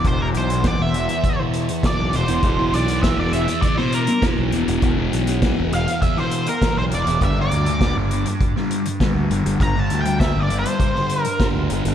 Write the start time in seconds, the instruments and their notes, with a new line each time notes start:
0.04 fingered electric bass E1, distorted electric guitar E2 B2 E3, lead electric guitar C5, kick, closed hi-hat
0.20 distorted electric guitar B2 E3, lead electric guitar A#4
0.34 fingered electric bass B1, lead electric guitar C5, closed hi-hat
0.50 distorted electric guitar B2 E3, closed hi-hat
0.64 distorted electric guitar E2 B2 E3, lead electric guitar D5, kick, snare, closed hi-hat
0.79 fingered electric bass E1, lead electric guitar E5
0.94 distorted electric guitar E2 B2 E3, closed hi-hat
1.09 muted distorted electric guitar stroke, closed hi-hat
1.23 kick, closed hi-hat
1.39 distorted electric guitar B2 E3
1.53 closed hi-hat
1.69 muted distorted electric guitar stroke, closed hi-hat
1.83 distorted electric guitar E2 B2 E3, lead electric guitar D5, kick, snare, closed hi-hat
1.99 fingered electric bass B1
2.13 fingered electric bass E1, distorted electric guitar E2 B2 E3, lead electric guitar C5, closed hi-hat
2.28 fingered electric bass E1, distorted electric guitar B2 E3, closed hi-hat
2.43 fingered electric bass E1, distorted electric guitar E2 B2 E3, kick, closed hi-hat
2.58 distorted electric guitar B2 E3
2.72 fingered electric bass B1, lead electric guitar D5, closed hi-hat
2.87 distorted electric guitar B2 E3, closed hi-hat
3.02 distorted electric guitar E2 B2 E3, lead electric guitar E5, kick, snare, closed hi-hat
3.18 fingered electric bass E1, lead electric guitar D5
3.33 distorted electric guitar E2 B2 E3, lead electric guitar E5, closed hi-hat
3.47 muted distorted electric guitar stroke, closed hi-hat
3.62 lead electric guitar D5, kick, closed hi-hat
3.77 distorted electric guitar B2 E3, lead electric guitar C5, snare
3.92 lead electric guitar A#4, closed hi-hat
4.07 muted distorted electric guitar stroke, closed hi-hat
4.21 distorted electric guitar E2 B2 E3, kick, snare, closed hi-hat
4.39 fingered electric bass B1
4.52 fingered electric bass E1, distorted electric guitar E2 B2 E3, closed hi-hat
4.67 fingered electric bass E1, distorted electric guitar B2 E3, closed hi-hat
4.82 fingered electric bass E1, distorted electric guitar E2 B2 E3, kick, closed hi-hat
4.97 distorted electric guitar B2 E3
5.13 fingered electric bass B1, closed hi-hat
5.27 distorted electric guitar B2 E3, closed hi-hat
5.42 distorted electric guitar E2 B2 E3, kick, snare, closed hi-hat
5.58 fingered electric bass E1
5.72 distorted electric guitar E2 B2 E3, lead electric guitar F5, closed hi-hat
5.87 muted distorted electric guitar stroke, closed hi-hat
6.02 lead electric guitar E5, kick, closed hi-hat
6.17 distorted electric guitar B2 E3, lead electric guitar C5, snare
6.31 closed hi-hat
6.46 lead electric guitar A#4, muted distorted electric guitar stroke, closed hi-hat
6.62 distorted electric guitar E2 B2 E3, kick, snare, closed hi-hat
6.77 fingered electric bass B1, lead electric guitar C5
6.91 fingered electric bass E1, distorted electric guitar E2 B2 E3, lead electric guitar D5, closed hi-hat
7.07 fingered electric bass E1, distorted electric guitar B2 E3, closed hi-hat
7.21 fingered electric bass G1, distorted electric guitar G2 D3 G3, lead electric guitar E5, kick, closed hi-hat
7.38 distorted electric guitar D3 G3, lead electric guitar D5
7.51 fingered electric bass D2, closed hi-hat
7.66 distorted electric guitar D3 G3, closed hi-hat
7.81 distorted electric guitar G2 D3 G3, kick, snare, closed hi-hat
7.96 fingered electric bass G1
8.11 distorted electric guitar G2 D3 G3, closed hi-hat
8.26 muted distorted electric guitar stroke, closed hi-hat
8.41 kick, closed hi-hat
8.56 distorted electric guitar D3 G3, snare
8.71 closed hi-hat
8.85 muted distorted electric guitar stroke, closed hi-hat
9.00 distorted electric guitar G2 D3 G3, kick, snare, closed hi-hat
9.15 fingered electric bass D2
9.30 fingered electric bass G1, distorted electric guitar G2 D3 G3, closed hi-hat
9.45 fingered electric bass G1, distorted electric guitar D3 G3, closed hi-hat
9.60 fingered electric bass G1, distorted electric guitar G2 D3 G3, lead electric guitar A#5, kick, closed hi-hat
9.75 distorted electric guitar D3 G3
9.80 lead electric guitar A5
9.90 fingered electric bass D2, closed hi-hat
10.01 lead electric guitar G5
10.05 distorted electric guitar D3 G3, closed hi-hat
10.20 distorted electric guitar G2 D3 G3, lead electric guitar E5, kick, snare, closed hi-hat
10.36 fingered electric bass G1, lead electric guitar D5
10.49 distorted electric guitar G2 D3 G3, closed hi-hat
10.59 lead electric guitar C5
10.65 muted distorted electric guitar stroke, closed hi-hat
10.80 kick, closed hi-hat
10.94 distorted electric guitar D3 G3, snare
11.09 closed hi-hat
11.21 lead electric guitar A#4, closed hi-hat
11.25 muted distorted electric guitar stroke
11.40 distorted electric guitar G2 D3 G3, kick, snare, closed hi-hat
11.55 fingered electric bass D2
11.70 fingered electric bass G1, distorted electric guitar G2 D3 G3, closed hi-hat
11.85 fingered electric bass G1, distorted electric guitar D3 G3, closed hi-hat